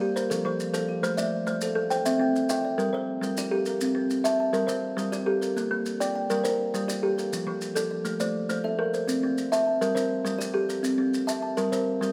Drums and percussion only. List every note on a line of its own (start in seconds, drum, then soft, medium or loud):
0.17 maracas medium
0.31 maracas medium
0.60 maracas medium
0.74 maracas medium
1.04 maracas medium
1.18 maracas medium
1.47 maracas medium
1.61 maracas medium
1.91 maracas medium
2.06 maracas medium
2.36 maracas medium
2.49 maracas medium
2.79 maracas medium
3.23 maracas medium
3.37 maracas medium
3.66 maracas medium
3.81 maracas medium
4.10 maracas medium
4.25 maracas medium
4.54 maracas soft
4.69 maracas medium
4.98 maracas medium
5.13 maracas medium
5.42 maracas medium
5.57 maracas medium
5.86 maracas medium
6.01 maracas medium
6.30 maracas medium
6.45 maracas medium
6.75 maracas medium
6.89 maracas medium
7.19 maracas medium
7.33 maracas medium
7.61 maracas medium
7.76 maracas medium
8.05 maracas medium
8.20 maracas medium
8.50 maracas medium
8.94 maracas medium
9.09 maracas medium
9.38 maracas medium
9.53 maracas medium
9.82 maracas medium
9.97 maracas medium
10.26 maracas medium
10.41 maracas medium
10.70 maracas medium
10.84 maracas medium
11.14 maracas medium
11.28 maracas medium
11.58 maracas medium
11.73 maracas medium
12.03 maracas medium